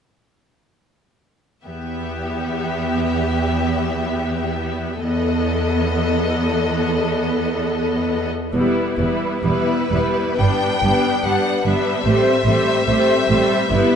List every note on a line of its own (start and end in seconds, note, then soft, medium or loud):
1.64 4.99 E2 soft
1.64 4.99 B3 soft
1.64 5.00 G4 soft
1.64 4.99 E5 soft
5.03 8.28 E2 soft
5.03 8.29 B3 soft
5.03 8.28 A4 soft
5.03 8.28 D#5 soft
8.53 8.62 E1 soft
8.53 8.61 E2 soft
8.53 8.97 G3 soft
8.53 8.97 B3 soft
8.53 8.96 E4 soft
8.53 8.97 B4 soft
8.98 9.06 E1 soft
8.98 9.06 E2 soft
8.98 9.42 G3 soft
8.98 9.42 B3 soft
8.98 9.42 E4 soft
8.98 9.42 B4 soft
9.43 9.51 E1 soft
9.43 9.52 E2 soft
9.43 9.90 G3 soft
9.43 9.90 B3 soft
9.43 9.90 E4 soft
9.43 10.35 B4 medium
9.43 9.90 B4 soft
9.91 9.99 E1 soft
9.91 9.99 E2 soft
9.91 10.38 G3 soft
9.91 10.38 B3 soft
9.91 10.38 E4 soft
9.91 10.37 B4 soft
10.38 10.48 G1 soft
10.38 10.48 G2 soft
10.38 10.81 G3 soft
10.38 10.81 B3 soft
10.38 10.82 D4 soft
10.38 10.81 B4 soft
10.38 11.24 G5 medium
10.82 10.91 G1 soft
10.82 10.91 G2 soft
10.82 11.23 G3 soft
10.82 11.22 B3 soft
10.82 11.22 D4 soft
10.82 11.23 B4 soft
11.23 11.32 G1 soft
11.23 11.33 G2 soft
11.23 11.64 G3 soft
11.23 11.63 B3 soft
11.23 11.64 D4 soft
11.23 11.64 B4 soft
11.23 11.65 F#5 medium
11.65 11.73 G1 soft
11.65 11.73 G2 soft
11.65 12.04 G3 soft
11.65 12.05 B3 soft
11.65 12.05 D4 soft
11.65 12.05 B4 soft
11.65 13.96 E5 medium
12.05 12.13 A1 soft
12.05 12.14 A2 soft
12.05 12.45 G3 soft
12.05 12.45 A3 soft
12.05 12.46 C4 soft
12.05 12.46 C5 soft
12.46 12.54 A1 soft
12.46 12.54 A2 soft
12.46 12.87 G3 soft
12.46 12.86 A3 soft
12.46 12.86 C4 soft
12.46 12.87 C5 soft
12.87 12.95 A1 soft
12.87 12.95 A2 soft
12.87 13.29 G3 soft
12.87 13.28 A3 soft
12.87 13.28 C4 soft
12.87 13.29 C5 soft
13.29 13.38 A1 soft
13.29 13.37 A2 soft
13.29 13.71 G3 soft
13.29 13.71 A3 soft
13.29 13.71 C4 soft
13.29 13.71 C5 soft
13.71 13.79 G1 soft
13.71 13.79 G2 soft
13.71 13.96 G3 soft
13.71 13.96 B3 soft
13.71 13.96 E4 soft
13.71 13.96 B4 soft